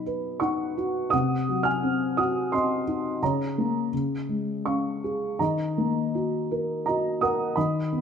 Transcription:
0, 0, Header, 1, 2, 480
1, 0, Start_track
1, 0, Tempo, 700935
1, 768, Time_signature, 3, 2, 24, 8
1, 2684, Tempo, 735294
1, 4604, Tempo, 696056
1, 5397, End_track
2, 0, Start_track
2, 0, Title_t, "Felt piano"
2, 0, Program_c, 0, 0
2, 0, Control_c, 0, 64, 127
2, 0, Note_on_c, 0, 47, 40
2, 0, Note_on_c, 0, 54, 30
2, 0, Note_on_c, 0, 63, 32
2, 0, Note_on_c, 0, 75, 37
2, 0, Note_on_c, 0, 83, 47
2, 42, Note_on_c, 0, 71, 33
2, 270, Note_off_c, 0, 63, 0
2, 272, Note_on_c, 0, 85, 51
2, 280, Note_on_c, 0, 63, 39
2, 287, Note_on_c, 0, 78, 45
2, 503, Note_off_c, 0, 54, 0
2, 530, Note_on_c, 0, 66, 31
2, 740, Note_off_c, 0, 78, 0
2, 741, Note_off_c, 0, 47, 0
2, 745, Note_off_c, 0, 71, 0
2, 750, Note_off_c, 0, 63, 0
2, 755, Note_on_c, 0, 87, 71
2, 761, Note_off_c, 0, 66, 0
2, 770, Note_on_c, 0, 78, 50
2, 775, Note_off_c, 0, 85, 0
2, 777, Control_c, 0, 64, 0
2, 777, Note_on_c, 0, 48, 45
2, 778, Note_off_c, 0, 83, 0
2, 779, Note_off_c, 0, 75, 0
2, 913, Control_c, 0, 64, 127
2, 1019, Note_on_c, 0, 54, 36
2, 1102, Note_off_c, 0, 78, 0
2, 1118, Note_on_c, 0, 89, 63
2, 1130, Note_off_c, 0, 87, 0
2, 1130, Note_on_c, 0, 80, 46
2, 1255, Note_on_c, 0, 60, 33
2, 1463, Note_off_c, 0, 80, 0
2, 1488, Note_on_c, 0, 87, 55
2, 1491, Note_on_c, 0, 66, 34
2, 1493, Note_off_c, 0, 89, 0
2, 1500, Note_on_c, 0, 78, 41
2, 1714, Note_off_c, 0, 78, 0
2, 1727, Note_off_c, 0, 60, 0
2, 1727, Note_on_c, 0, 84, 54
2, 1731, Note_off_c, 0, 87, 0
2, 1737, Note_on_c, 0, 60, 35
2, 1739, Note_on_c, 0, 75, 39
2, 1938, Note_off_c, 0, 54, 0
2, 1969, Note_on_c, 0, 63, 34
2, 2176, Note_off_c, 0, 48, 0
2, 2179, Note_off_c, 0, 75, 0
2, 2180, Note_off_c, 0, 66, 0
2, 2192, Note_off_c, 0, 60, 0
2, 2196, Note_off_c, 0, 63, 0
2, 2208, Control_c, 0, 64, 0
2, 2210, Note_on_c, 0, 82, 44
2, 2214, Note_on_c, 0, 49, 44
2, 2215, Note_off_c, 0, 84, 0
2, 2216, Note_on_c, 0, 73, 32
2, 2322, Control_c, 0, 64, 127
2, 2452, Note_on_c, 0, 58, 29
2, 2663, Note_off_c, 0, 82, 0
2, 2666, Note_off_c, 0, 73, 0
2, 2678, Note_off_c, 0, 49, 0
2, 2683, Note_off_c, 0, 58, 0
2, 2694, Control_c, 0, 64, 0
2, 2694, Note_on_c, 0, 49, 37
2, 2823, Control_c, 0, 64, 127
2, 2926, Note_on_c, 0, 56, 28
2, 3164, Note_on_c, 0, 85, 42
2, 3166, Note_on_c, 0, 61, 28
2, 3171, Note_on_c, 0, 77, 31
2, 3415, Note_on_c, 0, 68, 27
2, 3625, Note_off_c, 0, 49, 0
2, 3625, Note_off_c, 0, 77, 0
2, 3627, Note_off_c, 0, 56, 0
2, 3634, Note_off_c, 0, 61, 0
2, 3644, Note_off_c, 0, 68, 0
2, 3646, Note_on_c, 0, 82, 41
2, 3652, Note_on_c, 0, 51, 39
2, 3655, Control_c, 0, 64, 0
2, 3658, Note_on_c, 0, 75, 35
2, 3662, Note_off_c, 0, 85, 0
2, 3753, Control_c, 0, 64, 127
2, 3897, Note_on_c, 0, 58, 30
2, 4139, Note_on_c, 0, 66, 28
2, 4377, Note_on_c, 0, 70, 31
2, 4584, Note_off_c, 0, 75, 0
2, 4592, Note_off_c, 0, 82, 0
2, 4602, Note_on_c, 0, 82, 47
2, 4606, Note_off_c, 0, 66, 0
2, 4614, Note_on_c, 0, 75, 41
2, 4617, Note_on_c, 0, 66, 33
2, 4828, Note_off_c, 0, 58, 0
2, 4838, Note_off_c, 0, 75, 0
2, 4841, Note_off_c, 0, 70, 0
2, 4847, Note_on_c, 0, 87, 56
2, 4852, Note_on_c, 0, 70, 33
2, 4856, Note_off_c, 0, 82, 0
2, 4857, Note_on_c, 0, 78, 45
2, 5064, Note_off_c, 0, 51, 0
2, 5076, Note_off_c, 0, 78, 0
2, 5080, Note_off_c, 0, 66, 0
2, 5082, Note_off_c, 0, 70, 0
2, 5084, Note_on_c, 0, 83, 46
2, 5093, Note_on_c, 0, 51, 46
2, 5094, Note_off_c, 0, 87, 0
2, 5097, Control_c, 0, 64, 0
2, 5097, Note_on_c, 0, 75, 40
2, 5236, Control_c, 0, 64, 127
2, 5337, Note_on_c, 0, 59, 31
2, 5397, Note_off_c, 0, 51, 0
2, 5397, Note_off_c, 0, 59, 0
2, 5397, Note_off_c, 0, 75, 0
2, 5397, Note_off_c, 0, 83, 0
2, 5397, End_track
0, 0, End_of_file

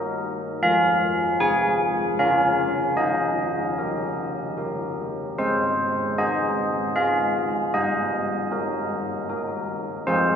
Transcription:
0, 0, Header, 1, 2, 480
1, 0, Start_track
1, 0, Tempo, 781250
1, 383, Time_signature, 3, 2, 24, 8
1, 1342, Tempo, 798935
1, 3742, Tempo, 780234
1, 6312, End_track
2, 0, Start_track
2, 0, Title_t, "Church bells"
2, 0, Program_c, 0, 14
2, 0, Note_on_c, 0, 63, 39
2, 0, Note_on_c, 0, 70, 45
2, 0, Note_on_c, 0, 75, 76
2, 114, Note_off_c, 0, 75, 0
2, 357, Note_off_c, 0, 63, 0
2, 358, Note_off_c, 0, 70, 0
2, 384, Note_on_c, 0, 53, 60
2, 385, Note_on_c, 0, 77, 88
2, 844, Note_off_c, 0, 77, 0
2, 849, Note_off_c, 0, 53, 0
2, 863, Note_on_c, 0, 60, 41
2, 863, Note_on_c, 0, 80, 85
2, 867, Note_on_c, 0, 68, 45
2, 1318, Note_off_c, 0, 60, 0
2, 1320, Note_off_c, 0, 68, 0
2, 1323, Note_off_c, 0, 80, 0
2, 1345, Note_on_c, 0, 65, 37
2, 1347, Note_on_c, 0, 61, 52
2, 1347, Note_on_c, 0, 77, 76
2, 1348, Note_on_c, 0, 70, 37
2, 1796, Note_off_c, 0, 65, 0
2, 1798, Note_off_c, 0, 70, 0
2, 1802, Note_off_c, 0, 77, 0
2, 1807, Note_off_c, 0, 61, 0
2, 1813, Note_on_c, 0, 75, 65
2, 1816, Note_on_c, 0, 63, 45
2, 2284, Note_off_c, 0, 63, 0
2, 2302, Note_on_c, 0, 70, 35
2, 2304, Note_on_c, 0, 67, 32
2, 2756, Note_off_c, 0, 75, 0
2, 2760, Note_off_c, 0, 70, 0
2, 2761, Note_off_c, 0, 67, 0
2, 2777, Note_on_c, 0, 67, 31
2, 2778, Note_on_c, 0, 70, 35
2, 3238, Note_off_c, 0, 67, 0
2, 3239, Note_off_c, 0, 70, 0
2, 3264, Note_on_c, 0, 56, 49
2, 3265, Note_on_c, 0, 72, 73
2, 3722, Note_off_c, 0, 72, 0
2, 3727, Note_off_c, 0, 56, 0
2, 3744, Note_on_c, 0, 63, 35
2, 3745, Note_on_c, 0, 68, 39
2, 3745, Note_on_c, 0, 75, 69
2, 4203, Note_off_c, 0, 63, 0
2, 4203, Note_off_c, 0, 68, 0
2, 4208, Note_off_c, 0, 75, 0
2, 4220, Note_on_c, 0, 63, 36
2, 4221, Note_on_c, 0, 77, 73
2, 4225, Note_on_c, 0, 68, 39
2, 4682, Note_off_c, 0, 63, 0
2, 4684, Note_off_c, 0, 68, 0
2, 4687, Note_off_c, 0, 77, 0
2, 4702, Note_on_c, 0, 75, 74
2, 4705, Note_on_c, 0, 55, 50
2, 5171, Note_off_c, 0, 55, 0
2, 5177, Note_on_c, 0, 63, 36
2, 5181, Note_on_c, 0, 70, 41
2, 5636, Note_off_c, 0, 63, 0
2, 5638, Note_off_c, 0, 70, 0
2, 5657, Note_on_c, 0, 63, 39
2, 5659, Note_on_c, 0, 70, 40
2, 5874, Note_off_c, 0, 75, 0
2, 6112, Note_off_c, 0, 63, 0
2, 6113, Note_off_c, 0, 70, 0
2, 6135, Note_on_c, 0, 72, 82
2, 6140, Note_on_c, 0, 53, 55
2, 6141, Note_on_c, 0, 65, 43
2, 6143, Note_on_c, 0, 68, 41
2, 6312, Note_off_c, 0, 53, 0
2, 6312, Note_off_c, 0, 65, 0
2, 6312, Note_off_c, 0, 68, 0
2, 6312, Note_off_c, 0, 72, 0
2, 6312, End_track
0, 0, End_of_file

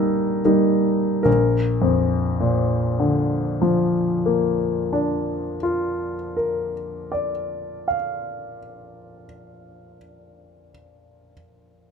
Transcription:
0, 0, Header, 1, 2, 480
1, 0, Start_track
1, 0, Key_signature, -2, "major"
1, 0, Tempo, 1666667
1, 360, Tempo, 1445783
1, 361, Time_signature, 12, 3, 24, 8
1, 2280, Tempo, 1418440
1, 3931, End_track
2, 0, Start_track
2, 0, Title_t, "Grand piano"
2, 0, Program_c, 0, 0
2, 0, Control_c, 0, 64, 127
2, 0, Note_on_c, 0, 55, 26
2, 0, Note_on_c, 0, 58, 26
2, 0, Note_on_c, 0, 63, 28
2, 0, Note_on_c, 0, 69, 58
2, 0, Note_on_c, 0, 70, 51
2, 115, Note_off_c, 0, 55, 0
2, 115, Note_off_c, 0, 58, 0
2, 116, Note_off_c, 0, 63, 0
2, 130, Note_on_c, 0, 55, 22
2, 130, Note_on_c, 0, 58, 22
2, 131, Note_on_c, 0, 63, 24
2, 350, Note_off_c, 0, 70, 0
2, 351, Note_off_c, 0, 55, 0
2, 351, Note_off_c, 0, 58, 0
2, 351, Note_off_c, 0, 63, 0
2, 354, Note_on_c, 0, 70, 33
2, 359, Note_on_c, 0, 34, 29
2, 371, Control_c, 0, 64, 0
2, 372, Note_off_c, 0, 69, 0
2, 460, Control_c, 0, 64, 127
2, 548, Note_on_c, 0, 41, 29
2, 743, Note_on_c, 0, 46, 27
2, 939, Note_on_c, 0, 50, 26
2, 1145, Note_on_c, 0, 53, 26
2, 1358, Note_on_c, 0, 58, 25
2, 1581, Note_on_c, 0, 62, 25
2, 1788, Note_off_c, 0, 70, 0
2, 1794, Note_off_c, 0, 34, 0
2, 1814, Note_on_c, 0, 65, 25
2, 1982, Note_off_c, 0, 41, 0
2, 2058, Note_on_c, 0, 70, 21
2, 2177, Note_off_c, 0, 46, 0
2, 2308, Note_on_c, 0, 74, 23
2, 2376, Note_off_c, 0, 50, 0
2, 2565, Note_on_c, 0, 77, 21
2, 2586, Note_off_c, 0, 53, 0
2, 2803, Note_off_c, 0, 58, 0
2, 3030, Note_off_c, 0, 62, 0
2, 3267, Note_off_c, 0, 65, 0
2, 3516, Note_off_c, 0, 70, 0
2, 3735, Note_off_c, 0, 74, 0
2, 3735, Note_off_c, 0, 77, 0
2, 3931, End_track
0, 0, End_of_file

